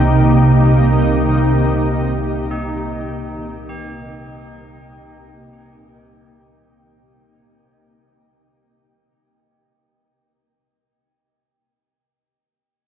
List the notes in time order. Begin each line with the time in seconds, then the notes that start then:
Already playing: C2 C3 A#3 D#4 G4
2.51 D#4
3.69 G4